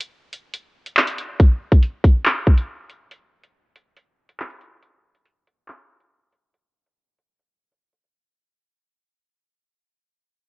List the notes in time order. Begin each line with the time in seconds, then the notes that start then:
0.01 closed hi-hat
0.33 closed hi-hat
0.54 closed hi-hat
0.86 closed hi-hat
0.97 clap
1.07 closed hi-hat
1.18 closed hi-hat
1.40 kick, closed hi-hat
1.72 kick, closed hi-hat
1.83 closed hi-hat
2.04 kick, closed hi-hat
2.25 clap, closed hi-hat
2.47 kick
2.58 closed hi-hat
2.90 closed hi-hat
3.11 closed hi-hat
3.44 closed hi-hat
3.76 closed hi-hat
3.97 closed hi-hat
4.29 closed hi-hat
4.40 clap
4.50 closed hi-hat
4.61 closed hi-hat
4.82 closed hi-hat
5.15 closed hi-hat
5.25 closed hi-hat
5.47 closed hi-hat
5.68 clap, closed hi-hat
6.00 closed hi-hat
6.32 closed hi-hat
6.54 closed hi-hat
6.86 closed hi-hat
7.19 closed hi-hat
7.39 closed hi-hat
7.72 closed hi-hat
7.93 closed hi-hat